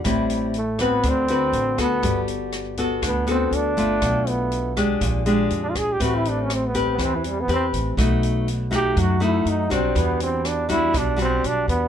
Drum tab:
HH |xxxxxxxx|xxxxxxxx|xxxxxxxx|xxxxxxxx|
SD |r--r---r|--r-r---|r--r---r|--r-r---|
BD |o--oo--o|o--oo--o|o--oo--o|o--oo--o|

HH |xxxxxxxx|xxxxxxxx|
SD |r--r---r|--r-r---|
BD |o--oo--o|o--oo--o|